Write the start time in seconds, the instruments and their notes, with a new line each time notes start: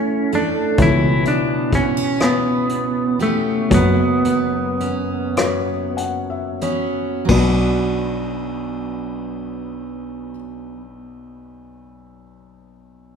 Already playing: felt piano A1 A2 A3 E4 C#5, steel-string acoustic guitar E3 A3 C#4 A4, clean electric guitar C#4
0.32 steel-string acoustic guitar A3 A4, clean electric guitar D4, closed hi-hat
0.78 fingered electric bass C#2, felt piano C#2 B2 B3 E4 C#5, steel-string acoustic guitar E3, kick, closed hi-hat
0.82 clean electric guitar E4
1.25 steel-string acoustic guitar B3, clean electric guitar D4, closed hi-hat
1.72 steel-string acoustic guitar B3, clean electric guitar C#4, kick, closed hi-hat
1.97 steel-string acoustic guitar C#4
2.20 felt piano B3 E4 C#5, steel-string acoustic guitar B3, clean electric guitar B3, cross-stick, closed hi-hat
2.69 closed hi-hat
3.19 clean electric guitar A3, steel-string acoustic guitar B3 C#4 G4, closed hi-hat
3.70 felt piano F#1 F#2 B3 F#4 C#5, fingered electric bass F#2, steel-string acoustic guitar F#3, kick, closed hi-hat
3.74 clean electric guitar B3
4.25 steel-string acoustic guitar B3, closed hi-hat
4.80 steel-string acoustic guitar C#4, closed hi-hat
5.37 felt piano B3 F#4 C#5, steel-string acoustic guitar B3, cross-stick, closed hi-hat
5.97 felt piano F#5, closed hi-hat
6.30 felt piano E5
6.61 steel-string acoustic guitar B3 C#4 F#4, felt piano C#5, closed hi-hat
7.25 fingered electric bass B1, steel-string acoustic guitar F#3, felt piano B3, kick, ride
7.29 felt piano B1 F#4 D5, steel-string acoustic guitar B3
7.35 steel-string acoustic guitar D4 F#4